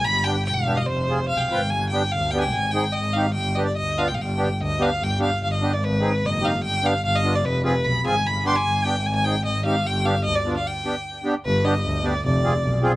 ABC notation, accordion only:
X:1
M:2/4
L:1/16
Q:1/4=148
K:none
V:1 name="Accordion"
z2 [B,DG] z3 [B,DG] z | z2 [CF_A] z3 [CFB] z | z2 [B,DG] z3 [B,DG] z | z2 [C_E_A] z3 [CEG] z |
z2 [B,DG] z3 [B,DF] z | z2 [B,DG] z3 [B,DG] z | z2 [B,DG] z3 [B,DG] z | z2 [C_E_A] z3 [CEG] z |
z2 [B,DG] z3 [B,DF] z | z2 [CF_A] z3 [CFA] z | z2 [B,DG] z3 [B,DG] z | z2 [C_E_A] z3 [CEG] z |
z2 [B,DG] z3 [B,DF] z | z2 [B,DG] z3 [B,DG] z | z2 [B,DG] z3 [B,DG] z | z2 [CF_A] z3 [CFA] z |]